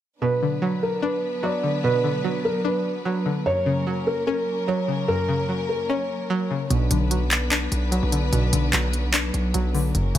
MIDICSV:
0, 0, Header, 1, 6, 480
1, 0, Start_track
1, 0, Key_signature, 2, "minor"
1, 0, Tempo, 405405
1, 258, Time_signature, 4, 2, 24, 8
1, 12056, End_track
2, 0, Start_track
2, 0, Title_t, "Felt piano"
2, 0, Program_c, 0, 0
2, 257, Note_on_c, 0, 71, 93
2, 934, Note_off_c, 0, 71, 0
2, 981, Note_on_c, 0, 70, 73
2, 1168, Note_off_c, 0, 70, 0
2, 1219, Note_on_c, 0, 71, 81
2, 1670, Note_off_c, 0, 71, 0
2, 1700, Note_on_c, 0, 74, 75
2, 2150, Note_off_c, 0, 74, 0
2, 2179, Note_on_c, 0, 71, 104
2, 2855, Note_off_c, 0, 71, 0
2, 2898, Note_on_c, 0, 70, 74
2, 3087, Note_off_c, 0, 70, 0
2, 3138, Note_on_c, 0, 71, 82
2, 4051, Note_off_c, 0, 71, 0
2, 4097, Note_on_c, 0, 73, 98
2, 4774, Note_off_c, 0, 73, 0
2, 4817, Note_on_c, 0, 70, 77
2, 5006, Note_off_c, 0, 70, 0
2, 5055, Note_on_c, 0, 70, 79
2, 5508, Note_off_c, 0, 70, 0
2, 5538, Note_on_c, 0, 73, 76
2, 5989, Note_off_c, 0, 73, 0
2, 6018, Note_on_c, 0, 70, 98
2, 6695, Note_off_c, 0, 70, 0
2, 6739, Note_on_c, 0, 70, 71
2, 6927, Note_off_c, 0, 70, 0
2, 6979, Note_on_c, 0, 73, 86
2, 7891, Note_off_c, 0, 73, 0
2, 12056, End_track
3, 0, Start_track
3, 0, Title_t, "String section"
3, 0, Program_c, 1, 48
3, 258, Note_on_c, 1, 59, 72
3, 259, Note_on_c, 1, 54, 74
3, 259, Note_on_c, 1, 62, 68
3, 259, Note_on_c, 1, 71, 83
3, 4060, Note_off_c, 1, 59, 0
3, 4060, Note_off_c, 1, 62, 0
3, 4060, Note_off_c, 1, 71, 0
3, 4098, Note_on_c, 1, 58, 72
3, 4098, Note_on_c, 1, 61, 70
3, 4098, Note_on_c, 1, 70, 88
3, 7891, Note_off_c, 1, 54, 0
3, 7900, Note_off_c, 1, 58, 0
3, 7900, Note_off_c, 1, 61, 0
3, 7900, Note_off_c, 1, 70, 0
3, 7938, Note_on_c, 1, 54, 81
3, 7938, Note_on_c, 1, 59, 73
3, 7938, Note_on_c, 1, 62, 71
3, 7938, Note_on_c, 1, 71, 89
3, 11739, Note_off_c, 1, 71, 0
3, 11740, Note_off_c, 1, 59, 0
3, 11740, Note_off_c, 1, 62, 0
3, 11777, Note_on_c, 1, 58, 72
3, 11778, Note_on_c, 1, 61, 72
3, 11778, Note_on_c, 1, 70, 88
3, 12056, Note_off_c, 1, 54, 0
3, 12056, Note_off_c, 1, 58, 0
3, 12056, Note_off_c, 1, 61, 0
3, 12056, Note_off_c, 1, 70, 0
3, 12056, End_track
4, 0, Start_track
4, 0, Title_t, "Synth pluck"
4, 0, Program_c, 2, 84
4, 259, Note_on_c, 2, 47, 85
4, 505, Note_on_c, 2, 50, 72
4, 734, Note_on_c, 2, 54, 89
4, 1213, Note_on_c, 2, 62, 87
4, 1459, Note_off_c, 2, 47, 0
4, 1679, Note_off_c, 2, 54, 0
4, 1693, Note_on_c, 2, 54, 101
4, 1701, Note_off_c, 2, 50, 0
4, 1936, Note_on_c, 2, 50, 73
4, 2177, Note_on_c, 2, 47, 93
4, 2401, Note_off_c, 2, 50, 0
4, 2415, Note_off_c, 2, 62, 0
4, 2415, Note_on_c, 2, 50, 79
4, 2643, Note_off_c, 2, 54, 0
4, 2657, Note_on_c, 2, 54, 84
4, 3133, Note_on_c, 2, 62, 89
4, 3378, Note_off_c, 2, 47, 0
4, 3601, Note_off_c, 2, 54, 0
4, 3616, Note_on_c, 2, 54, 97
4, 3617, Note_off_c, 2, 50, 0
4, 3857, Note_on_c, 2, 50, 74
4, 4095, Note_off_c, 2, 62, 0
4, 4097, Note_off_c, 2, 50, 0
4, 4097, Note_off_c, 2, 54, 0
4, 4097, Note_on_c, 2, 42, 89
4, 4336, Note_on_c, 2, 49, 78
4, 4579, Note_on_c, 2, 54, 77
4, 5058, Note_on_c, 2, 61, 93
4, 5297, Note_off_c, 2, 42, 0
4, 5529, Note_off_c, 2, 54, 0
4, 5537, Note_off_c, 2, 49, 0
4, 5543, Note_on_c, 2, 54, 92
4, 5777, Note_on_c, 2, 49, 76
4, 6017, Note_on_c, 2, 42, 93
4, 6244, Note_off_c, 2, 49, 0
4, 6258, Note_off_c, 2, 61, 0
4, 6258, Note_on_c, 2, 49, 78
4, 6483, Note_off_c, 2, 54, 0
4, 6497, Note_on_c, 2, 54, 72
4, 6981, Note_on_c, 2, 61, 92
4, 7218, Note_off_c, 2, 42, 0
4, 7446, Note_off_c, 2, 54, 0
4, 7458, Note_off_c, 2, 49, 0
4, 7460, Note_on_c, 2, 54, 104
4, 7703, Note_on_c, 2, 49, 76
4, 7939, Note_off_c, 2, 54, 0
4, 7939, Note_off_c, 2, 61, 0
4, 7940, Note_on_c, 2, 47, 84
4, 7941, Note_off_c, 2, 49, 0
4, 8186, Note_on_c, 2, 50, 78
4, 8414, Note_on_c, 2, 54, 85
4, 8893, Note_on_c, 2, 62, 83
4, 9139, Note_off_c, 2, 47, 0
4, 9359, Note_off_c, 2, 54, 0
4, 9374, Note_on_c, 2, 54, 103
4, 9382, Note_off_c, 2, 50, 0
4, 9617, Note_on_c, 2, 50, 74
4, 9858, Note_on_c, 2, 47, 93
4, 10082, Note_off_c, 2, 50, 0
4, 10095, Note_off_c, 2, 62, 0
4, 10096, Note_on_c, 2, 50, 80
4, 10324, Note_off_c, 2, 54, 0
4, 10338, Note_on_c, 2, 54, 84
4, 10813, Note_on_c, 2, 62, 91
4, 11058, Note_off_c, 2, 47, 0
4, 11283, Note_off_c, 2, 54, 0
4, 11297, Note_off_c, 2, 50, 0
4, 11297, Note_on_c, 2, 54, 102
4, 11538, Note_on_c, 2, 50, 80
4, 11776, Note_off_c, 2, 62, 0
4, 11777, Note_off_c, 2, 54, 0
4, 11778, Note_off_c, 2, 50, 0
4, 11778, Note_on_c, 2, 42, 91
4, 12017, Note_on_c, 2, 49, 81
4, 12056, Note_off_c, 2, 42, 0
4, 12056, Note_off_c, 2, 49, 0
4, 12056, End_track
5, 0, Start_track
5, 0, Title_t, "808-style bass"
5, 0, Program_c, 3, 38
5, 7938, Note_on_c, 3, 35, 110
5, 8168, Note_off_c, 3, 35, 0
5, 8178, Note_on_c, 3, 35, 105
5, 9100, Note_off_c, 3, 35, 0
5, 9138, Note_on_c, 3, 35, 104
5, 9491, Note_off_c, 3, 35, 0
5, 9505, Note_on_c, 3, 35, 97
5, 9844, Note_off_c, 3, 35, 0
5, 9858, Note_on_c, 3, 35, 114
5, 10088, Note_off_c, 3, 35, 0
5, 10098, Note_on_c, 3, 35, 104
5, 10328, Note_off_c, 3, 35, 0
5, 10338, Note_on_c, 3, 35, 110
5, 11029, Note_off_c, 3, 35, 0
5, 11058, Note_on_c, 3, 35, 103
5, 11288, Note_off_c, 3, 35, 0
5, 11298, Note_on_c, 3, 35, 107
5, 11759, Note_off_c, 3, 35, 0
5, 11778, Note_on_c, 3, 30, 116
5, 12009, Note_off_c, 3, 30, 0
5, 12018, Note_on_c, 3, 30, 108
5, 12056, Note_off_c, 3, 30, 0
5, 12056, End_track
6, 0, Start_track
6, 0, Title_t, "Drums"
6, 7939, Note_on_c, 9, 42, 71
6, 8057, Note_off_c, 9, 42, 0
6, 8178, Note_on_c, 9, 42, 90
6, 8297, Note_off_c, 9, 42, 0
6, 8418, Note_on_c, 9, 42, 76
6, 8537, Note_off_c, 9, 42, 0
6, 8658, Note_on_c, 9, 39, 92
6, 8658, Note_on_c, 9, 42, 70
6, 8777, Note_off_c, 9, 39, 0
6, 8777, Note_off_c, 9, 42, 0
6, 8898, Note_on_c, 9, 39, 109
6, 8898, Note_on_c, 9, 42, 86
6, 9016, Note_off_c, 9, 39, 0
6, 9017, Note_off_c, 9, 42, 0
6, 9138, Note_on_c, 9, 42, 73
6, 9257, Note_off_c, 9, 42, 0
6, 9378, Note_on_c, 9, 42, 83
6, 9497, Note_off_c, 9, 42, 0
6, 9618, Note_on_c, 9, 42, 79
6, 9737, Note_off_c, 9, 42, 0
6, 9858, Note_on_c, 9, 42, 70
6, 9977, Note_off_c, 9, 42, 0
6, 10098, Note_on_c, 9, 42, 99
6, 10217, Note_off_c, 9, 42, 0
6, 10338, Note_on_c, 9, 42, 75
6, 10339, Note_on_c, 9, 39, 91
6, 10457, Note_off_c, 9, 39, 0
6, 10457, Note_off_c, 9, 42, 0
6, 10578, Note_on_c, 9, 42, 61
6, 10697, Note_off_c, 9, 42, 0
6, 10818, Note_on_c, 9, 39, 106
6, 10818, Note_on_c, 9, 42, 93
6, 10936, Note_off_c, 9, 39, 0
6, 10937, Note_off_c, 9, 42, 0
6, 11059, Note_on_c, 9, 42, 71
6, 11177, Note_off_c, 9, 42, 0
6, 11298, Note_on_c, 9, 42, 82
6, 11416, Note_off_c, 9, 42, 0
6, 11538, Note_on_c, 9, 46, 58
6, 11657, Note_off_c, 9, 46, 0
6, 11778, Note_on_c, 9, 42, 73
6, 11896, Note_off_c, 9, 42, 0
6, 12018, Note_on_c, 9, 42, 87
6, 12056, Note_off_c, 9, 42, 0
6, 12056, End_track
0, 0, End_of_file